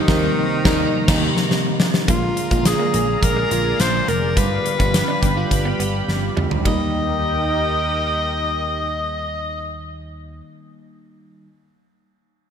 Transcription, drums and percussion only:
0.08 kick, snare
0.65 kick, snare
1.08 kick, snare, crash
1.37 snare
1.51 snare
1.80 snare
1.94 snare
2.08 kick, closed hi-hat
2.37 closed hi-hat
2.51 kick, closed hi-hat
2.65 snare, closed hi-hat
2.94 closed hi-hat
3.23 kick, closed hi-hat
3.51 closed hi-hat
3.80 snare, closed hi-hat
4.08 closed hi-hat
4.37 kick, closed hi-hat
4.66 closed hi-hat
4.80 kick, closed hi-hat
4.94 snare, closed hi-hat
5.23 kick, closed hi-hat
5.51 kick, closed hi-hat
5.80 closed hi-hat
6.08 snare
6.37 mid tom
6.51 floor tom
6.65 kick, ride

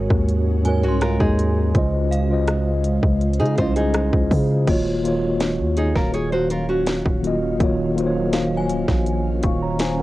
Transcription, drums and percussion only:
0.10 kick, cross-stick
0.28 closed hi-hat
0.65 closed hi-hat
1.01 cross-stick, closed hi-hat
1.20 kick
1.39 closed hi-hat
1.75 kick, closed hi-hat
2.12 closed hi-hat
2.48 cross-stick, closed hi-hat
2.84 closed hi-hat
3.03 kick
3.21 closed hi-hat
3.33 closed hi-hat
3.46 closed hi-hat
3.58 kick, closed hi-hat
3.76 closed hi-hat
3.94 cross-stick, closed hi-hat
4.13 kick
4.31 kick, open hi-hat
4.67 kick, closed hi-hat, crash
5.05 closed hi-hat
5.40 snare, closed hi-hat
5.77 closed hi-hat
5.95 kick, snare
6.14 closed hi-hat
6.50 closed hi-hat
6.87 snare, closed hi-hat
7.06 kick
7.24 closed hi-hat
7.60 kick, closed hi-hat
7.98 closed hi-hat
8.33 snare, closed hi-hat
8.70 closed hi-hat
8.88 kick, snare
9.06 closed hi-hat
9.43 kick, closed hi-hat
9.79 snare, closed hi-hat

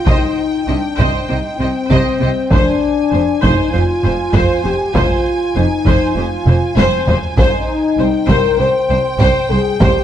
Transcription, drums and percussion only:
0.07 taiko
0.99 taiko
1.90 taiko
2.51 taiko
3.43 taiko
4.34 taiko
4.95 taiko
5.85 taiko
6.47 taiko mid
6.77 taiko high
7.07 taiko low
7.37 taiko
8.29 taiko
9.19 taiko
9.80 taiko

